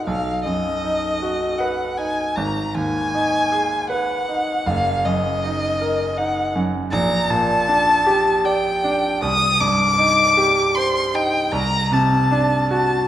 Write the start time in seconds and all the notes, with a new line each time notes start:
0.06 B1 F5
0.44 F#2 D#5
0.84 D#4
1.22 F#4
1.58 B4 F#5
1.97 D#4 G#5
2.35 G#1 A#5
2.74 D#2 G#5
3.15 D#4
3.52 G#4
3.90 B4 F#5
4.28 D#4
4.66 F#1 F5
5.05 F#2 D#5
5.44 D#4
5.81 A#4
6.17 D#4 F#5
6.55 F#2
6.91 A#1 A#5
7.29 A#2 A5
7.68 D4
8.06 G4
8.45 D5 G5
8.84 D4
9.22 C2 D#6
9.60 G2 D6
9.98 D#4
10.37 G4
10.75 C5 C6
11.14 D#4 G5
11.52 C2 A#5
11.92 C3 A5
12.31 D4
12.71 F#4 A5